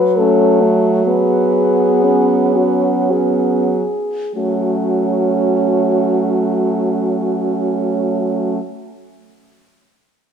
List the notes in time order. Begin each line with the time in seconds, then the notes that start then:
Already playing: F#3 B4
0.17 A3 C#4 A4
0.62 A3
1.06 B3 G#4
2.04 C#4
2.56 C#4 F#4
3.11 B3 C#4 G#4
4.35 F#3 A3 C#4 F#4